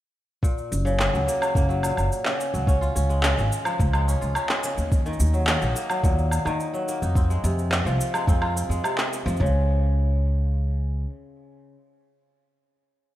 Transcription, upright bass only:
0.72 1.07 F#1 medium
1.14 1.23 C#2 medium
1.55 1.91 F#1 medium
1.98 2.07 F#1 medium
2.54 2.89 C#2 medium
2.96 3.31 C#2 medium
3.38 3.48 G#1 medium
3.80 4.15 C#2 medium
4.22 4.32 C#2 medium
4.78 5.13 D#2 medium
5.20 5.56 D#2 loud
5.62 5.72 A#1 medium
6.04 6.40 D#2 medium
6.45 6.56 D#2 medium
7.02 7.38 F2 medium
7.44 7.80 F2 medium
7.85 7.96 C2 medium
8.28 8.64 F2 medium
8.69 8.80 F2 medium
9.26 9.36 F2 loud
9.40 11.04 C#2 medium

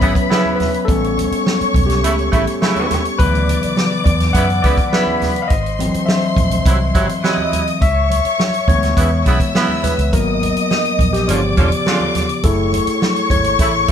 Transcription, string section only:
0.00 0.84 B4 medium
0.00 0.84 B5 medium
0.87 2.57 C#5 medium
0.87 2.57 C#6 medium
2.61 3.18 C#5 medium
2.61 3.18 C#6 medium
3.19 4.89 D5 medium
3.19 4.89 D6 loud
4.93 5.49 B4 medium
4.93 5.49 B5 medium
5.50 7.20 C5 medium
5.50 7.20 C6 medium
7.23 7.80 D#5 medium
7.23 7.80 D#6 medium
7.81 9.23 C#5 medium
7.81 9.23 C#6 medium
9.25 10.11 E5 medium
9.25 10.11 E6 medium
10.12 11.26 D#5 medium
10.12 11.26 D#6 medium
11.28 12.41 D5 medium
11.28 12.41 D6 medium
12.44 13.92 C#5 medium
12.44 13.92 C#6 loud

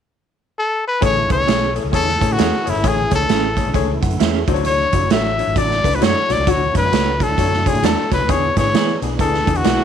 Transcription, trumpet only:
0.59 0.84 A4 medium
0.88 1.03 B4 medium
1.05 1.30 C#5 loud
1.32 1.74 C#5 loud
1.95 2.34 A4 loud
2.32 2.71 F#4 medium
2.70 2.89 E4 medium
2.88 3.14 G#4 medium
3.15 3.73 A4 loud
4.67 5.08 C#5 medium
5.12 5.59 E5 medium
5.58 5.97 D5 loud
5.95 6.05 B4 medium
6.04 6.34 C#5 loud
6.32 6.52 D5 medium
6.50 6.76 C#5 medium
6.77 7.24 B4 loud
7.23 7.69 A4 medium
7.68 7.87 G#4 medium
7.86 8.12 A4 medium
8.13 8.32 B4 medium
8.31 8.57 C#5 medium
8.58 8.99 C#5 medium
9.21 9.58 A4 medium
9.57 9.84 F#4 medium

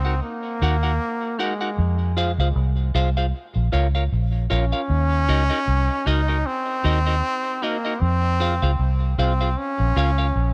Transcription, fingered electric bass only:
0.00 0.20 C#2 medium
0.62 0.98 D#2 medium
1.78 2.36 F2 loud
2.38 2.54 C#2 medium
2.56 2.92 C2 loud
2.95 3.31 C2 medium
3.56 3.71 A#1 medium
3.73 4.10 C#2 loud
4.12 4.49 A#1 medium
4.51 4.72 A#1 medium
4.90 5.26 D#2 loud
5.29 5.49 C#2 loud
5.67 5.88 C2 loud
6.06 6.43 C#2 medium
6.85 7.21 D#2 loud
8.02 8.59 F2 loud
8.62 8.78 C#2 medium
8.79 9.16 C2 loud
9.18 9.54 C2 loud
9.80 9.95 A#1 loud
9.96 10.32 C#2 loud
10.36 10.54 A#1 medium

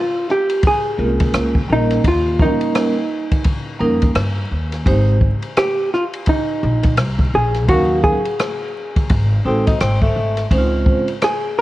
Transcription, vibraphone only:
0.98 1.50 G#3 medium
0.98 1.50 A#3 medium
0.98 1.06 C4 soft
0.98 1.51 F4 medium
0.98 1.51 A#4 medium
1.05 1.54 C#4 soft
1.68 1.95 G3 medium
1.68 1.95 A#3 medium
1.68 1.96 C#4 soft
1.68 1.96 D#4 soft
1.68 1.96 A#4 medium
2.38 2.47 F3 medium
2.38 2.92 A#3 medium
2.38 2.92 C#4 medium
2.38 2.92 D#4 medium
2.38 2.92 A#4 medium
2.45 2.94 G3 medium
3.79 4.07 G3 medium
3.79 4.07 A#3 medium
3.79 4.07 C#4 medium
3.79 4.07 D#4 medium
3.79 4.08 A#4 medium
4.86 5.13 G#3 medium
4.86 5.13 C4 medium
4.86 5.13 D#4 medium
4.86 5.13 G4 medium
4.86 5.14 C5 medium
7.68 8.12 F#3 medium
7.68 8.12 C#4 medium
7.68 8.13 D#4 medium
7.68 8.13 A#4 medium
7.68 8.13 F5 medium
9.44 9.72 G#3 medium
9.44 9.72 C4 medium
9.44 9.72 D#4 medium
9.44 9.72 F#4 medium
9.44 9.73 A4 medium
10.51 11.03 G#3 medium
10.51 11.03 C4 medium
10.51 11.03 C#4 medium
10.51 10.59 D#4 soft
10.51 11.04 C5 medium
10.58 11.07 F4 medium

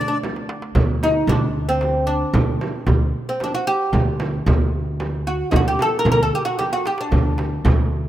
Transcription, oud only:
0.01 0.07 D4 medium
0.08 0.14 D4 medium
1.03 1.29 D#4 medium
1.29 1.68 D4 medium
1.69 2.06 C4 medium
2.07 2.92 D4 medium
3.29 3.43 C4 medium
3.44 3.54 D4 medium
3.55 3.67 F#4 medium
3.67 4.37 G4 medium
5.27 5.51 F#4 medium
5.51 5.55 D#4 medium
5.56 5.66 F#4 medium
5.68 5.81 G4 medium
5.82 5.99 A4 loud
5.99 6.10 A#4 loud
6.12 6.22 A#4 loud
6.23 6.34 A4 medium
6.35 6.45 G4 medium
6.45 6.57 F#4 medium
6.59 6.72 G4 medium
6.73 6.85 F#4 medium
6.87 7.00 G4 medium
7.01 7.81 D4 medium

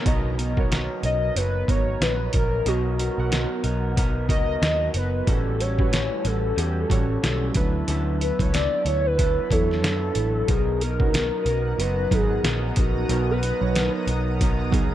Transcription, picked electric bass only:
0.06 0.87 B1 medium
1.03 1.29 B1 medium
1.36 1.62 F#1 medium
1.68 1.95 G#1 medium
2.01 2.27 A#1 medium
2.34 2.60 A#1 medium
2.66 3.08 B1 medium
3.18 3.44 B1 medium
3.64 4.29 B1 loud
4.29 4.55 C#2 medium
4.62 4.88 D#2 medium
4.94 5.21 F#1 medium
5.27 6.08 A1 medium
6.25 6.51 A1 medium
6.57 6.84 E2 loud
6.90 7.16 A1 medium
7.23 7.49 B1 medium
7.55 7.81 D2 loud
7.88 8.30 D2 medium
8.39 8.66 C#2 medium
8.85 9.38 D2 medium
9.51 9.83 E2 medium
9.83 10.09 F#2 medium
10.16 10.42 A1 medium
10.49 11.29 B1 medium
11.46 11.72 B1 medium
11.79 12.05 F#1 loud
12.11 12.38 G#1 medium
12.44 12.70 A#1 medium
12.77 13.03 A#1 medium
13.09 13.51 B1 loud
13.62 13.88 B1 medium
14.07 14.72 B1 medium
14.72 14.95 C#2 medium

